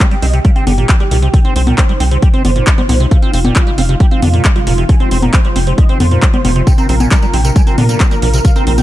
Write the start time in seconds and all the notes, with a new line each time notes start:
Already playing: C3 D#3 G3 D#4 G4
0.00 G3 G4, kick, clap, closed hi-hat
0.11 G3 G4, closed hi-hat
0.22 C2 C4 D#5, open hi-hat
0.34 C3 G4, closed hi-hat
0.45 G3 F5, kick, closed hi-hat
0.56 C4 G4, closed hi-hat
0.67 G1 D3 G4, open hi-hat, high conga
0.78 A#2 G4, closed hi-hat
0.89 G3, kick, clap, closed hi-hat
1.00 G3 G4, closed hi-hat
1.11 C2 A#2 G4, open hi-hat
1.22 C3 G4, closed hi-hat
1.34 C3 F4 G5, kick, closed hi-hat
1.45 C4 C5, closed hi-hat
1.56 C2 C4 C5, open hi-hat
1.67 A#2 G5, closed hi-hat, high conga
1.78 G3 C5, kick, clap, closed hi-hat
1.89 G3 C5, closed hi-hat
2.00 C2 C4 G5, open hi-hat
2.11 C3 C5, closed hi-hat
2.22 G3 G5, kick, closed hi-hat
2.34 C4 C5, closed hi-hat
2.45 G1 D3 C5, open hi-hat, high conga
2.56 A#2 C5, closed hi-hat
2.67 G3, kick, clap, closed hi-hat
2.78 G3 C5, closed hi-hat, high conga
2.89 C2 A#2 C5, open hi-hat, high conga
3.00 C3 C5, closed hi-hat
3.11 C3 F3 G#3 F5, kick, closed hi-hat
3.22 C4 F4, closed hi-hat
3.33 F1 C4 F4, open hi-hat
3.45 A#2 G5, closed hi-hat, high conga
3.56 G3 F4, kick, clap, closed hi-hat
3.67 G3 F4, closed hi-hat
3.78 F1 C4 F5, open hi-hat
3.89 C3 F4, closed hi-hat
4.00 G3 G5, kick, closed hi-hat
4.11 C4 F4, closed hi-hat
4.22 F2 D3 F4, open hi-hat, high conga
4.33 A#2 F4, closed hi-hat
4.45 G3, kick, clap, closed hi-hat
4.56 G3 F4, closed hi-hat
4.67 F1 A#2 F4, open hi-hat
4.78 C3 F4, closed hi-hat
4.89 C3 G#5, kick, closed hi-hat
5.00 C4 C5, closed hi-hat
5.11 F1 C4 C5, open hi-hat
5.22 A#2 A#5, closed hi-hat, high conga
5.34 G3 C5, kick, clap, closed hi-hat
5.45 G3 C5, closed hi-hat
5.56 F1 C4 G5, open hi-hat
5.67 C3 C5, closed hi-hat
5.78 G3 D#5, kick, closed hi-hat
5.89 C4 C5, closed hi-hat
6.00 F2 D3 C5, open hi-hat, high conga
6.11 A#2 C5, closed hi-hat
6.22 G3, kick, clap, closed hi-hat
6.34 G3 C5, closed hi-hat, high conga
6.45 F1 A#2 C5, open hi-hat, high conga
6.56 C3 C5, closed hi-hat
6.67 C3 A#3 D4 G5, kick, closed hi-hat, tambourine
6.78 C4 A#4, closed hi-hat, tambourine
6.89 A#1 C4 A#4, open hi-hat
7.00 A#2 G#5, closed hi-hat, tambourine, high conga
7.11 G3 A#4, kick, clap, closed hi-hat, tambourine
7.22 G3 A#4, closed hi-hat, tambourine
7.34 A#1 C4 G5, open hi-hat
7.45 C3 A#4, closed hi-hat, tambourine
7.56 G3 G#5, kick, closed hi-hat, tambourine
7.67 C4 A#4, closed hi-hat, tambourine
7.78 A#2 D3 A#4, open hi-hat, high conga
7.89 A#2 A#4, closed hi-hat, tambourine
8.00 G3, kick, clap, closed hi-hat, tambourine
8.11 G3 A#4, closed hi-hat, tambourine
8.22 A#1 A#2 A#4, open hi-hat
8.34 C3 A#4, closed hi-hat, tambourine
8.45 C3 F5, kick, closed hi-hat, tambourine
8.56 C4 A#4, closed hi-hat, tambourine
8.67 A#1 C4 A#4, open hi-hat
8.78 A#2 G5, closed hi-hat, tambourine, high conga